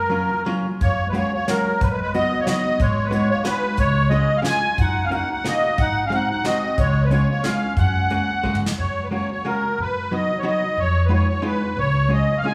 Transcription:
Already playing: F#2 A#4
0.10 F#3 A#3 C#4 F4
0.46 F#3 A#3 C#4 F4
0.80 F#2 A#3 C#5, kick, closed hi-hat
1.06 G#3 B4
1.13 G#3 A#3 C#4 F#4 C#5, closed hi-hat
1.32 A#3 C#5
1.48 F#3 G#3 A#3 C#4 F#4 A#4, snare, closed hi-hat
1.81 F#2 F#3 B4, kick, closed hi-hat
1.90 G#3 B4
2.01 G#3 B4
2.13 F#3 B3 D#4 F#4 D#5, closed hi-hat
2.40 A#3 C#5
2.46 F#3 B3 D#4 F#4 D#5, snare, closed hi-hat
2.80 G#2 G#3 C#5, kick, closed hi-hat
3.05 G#3 B4
3.11 G#3 B3 D#4 F#4 C#5, closed hi-hat
3.30 A#3 C#5
3.44 G#3 B3 D#4 F#4 B4, snare, closed hi-hat
3.77 C#2 G#3 C#5, kick, closed hi-hat
4.09 G#3 C#4 F4 G#4 D#5, closed hi-hat
4.13 G#3
4.37 F5
4.42 G#3 C#4 F4 G#4, snare, closed hi-hat
4.47 F4 G#5
4.78 F#2 D#4 F#5, kick, closed hi-hat
5.04 C#4 F5
5.11 A#3 C#4 D#4 F#4 F#5, closed hi-hat
5.30 D#4 F#5
5.44 A#3 C#4 D#4 F#4 D#5, snare, closed hi-hat
5.78 G#2 D#4 F#5, kick, closed hi-hat
6.06 C#4 F5
6.10 G#3 C4 D#4 F#4, closed hi-hat
6.15 D#4 F#5
6.31 D#4 F#5
6.44 G#3 C4 D#4 F#4 D#5, snare, closed hi-hat
6.78 C#2 G#3 C#5, kick, closed hi-hat
7.04 G#3 B4
7.10 G#3 B3 C#4 F4 C#5, closed hi-hat
7.30 A#3 C#5
7.43 G#3 B3 C#4 F4 F5, snare, closed hi-hat
7.77 F#2 C#4 F#5, kick, closed hi-hat
8.10 G#3 A#3 C#4 F#4, closed hi-hat
8.43 G#3 A#3 C#4 F#4, kick
8.55 mid tom
8.66 snare
8.78 F#2 C#5
9.05 B4
9.11 G#3 A#3 C#4 F#4 C#5
9.32 C#5
9.45 G#3 A#3 C#4 F#4 A#4
9.79 F#2 B4
10.11 F#3 B3 D#4 F#4 D#5
10.39 C#5
10.43 F#3 B3 D#4 F#4 D#5
10.77 F2 C#5
11.06 G#3 B4
11.10 B3 D#4 F4 C#5
11.29 C#5
11.42 G#3 B3 D#4 F4
11.46 B4
11.77 C#2 C#5
12.09 G#3 C#4 F4 G#4
12.13 D#5
12.38 F5
12.44 G#3 C#4 F4 G#4 G#5

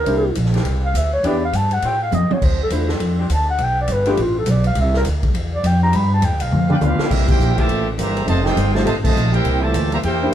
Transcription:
Already playing: A#4
0.06 C2 A#3 D4 E4 G4 C5, ride
0.35 A#1, hi-hat pedal, ride
0.45 snare
0.53 E3 A#3 C4 G4, snare, ride
0.65 C2, ride
0.85 F5
0.94 D2 E5, hi-hat pedal, ride
1.13 C#5
1.23 E2 E3 B3 D4 E4 G4 B4 D5, ride
1.45 F5
1.53 G2 A5, hi-hat pedal, ride
1.71 F#5, ride
1.82 A2 F3 A3 C#4 G4 G5, ride
2.03 F5
2.12 F2 D#5, hi-hat pedal, high tom
2.30 C#5, muted upright bass stroke, high tom
2.42 D2 C5, kick, crash
2.63 A4
2.70 E2 A3 D4 E4 F4 C5, hi-hat pedal, ride
2.88 F3 C4 D4 A4, snare
3.00 F2, ride
3.18 F3 C4 D4 G4
3.30 D2, hi-hat pedal, ride
3.34 A5
3.50 F#5
3.58 B1, ride
3.63 G5
3.81 D5
3.88 G1, hi-hat pedal, ride
3.92 B4
4.06 F3 A3 B3 D4 F4 G4 B4, ride
4.10 G4
4.17 A1, ride
4.22 F4
4.39 A4
4.46 B1, hi-hat pedal, ride
4.50 D5
4.64 F5, ride
4.75 C2, ride
4.81 E5
4.94 A#4, snare
5.05 D2, hi-hat pedal, ride
5.23 kick, ride
5.34 E2, ride
5.55 D5
5.64 F2 G5, hi-hat pedal, ride
5.81 F3 B3 D4 G4 A#5
5.93 G2 B5, ride
6.14 A5
6.22 E2 G5, hi-hat pedal, ride
6.31 D2
6.40 B1 F5, ride
6.51 F2, mid tom
6.68 B3 D4 F4 G4 B4 D5 G5, mid tom
6.81 D2 B3 D4 F4 G4 B4 F5, hi-hat pedal, mid tom
6.99 E3 A#3 C4 G4, snare
7.10 C2 G3 A#3 C4 E4 G4 A#4 E5, kick, crash
7.26 A#3 E4 G4 A#4 C5 G5, kick, crash
7.39 A#1, hi-hat pedal
7.56 A#2 E3 A3 A#3 C4 G4 C5 E5 A5, kick, ride
7.69 A1, ride
7.97 G1 E3 G3 A#3 G4 C5 E5 A#5, hi-hat pedal, ride
8.17 ride
8.26 F1 C3 D#3 A3 F4 C5 D#5 A5, ride
8.43 C4 D#4 F4 G4 C5 D#5 G5, snare
8.56 G1, hi-hat pedal, ride
8.72 C3 D#3 A3 D#4 F4 G4 C5 D#5 A5, snare
8.77 C5
8.84 A1 C3 D#3 A3 F4 C5 D#5 A5, ride
9.03 C3 D#3 A3 F4 C5 D#5 A5, kick, crash
9.15 A#1, hi-hat pedal
9.32 A#3 E4 G4 A#4 C5 G5, ride
9.44 C2, ride
9.62 A#2 E3 A3 G4 C5 E5 A5
9.74 D2, hi-hat pedal, ride
9.92 E3 G3 A#3 G4 C5 E5 A#5, ride
10.03 E2 A#3 E4 G4 A#4 C5 G5, ride
10.23 A#3 D4 E4 G4 C5

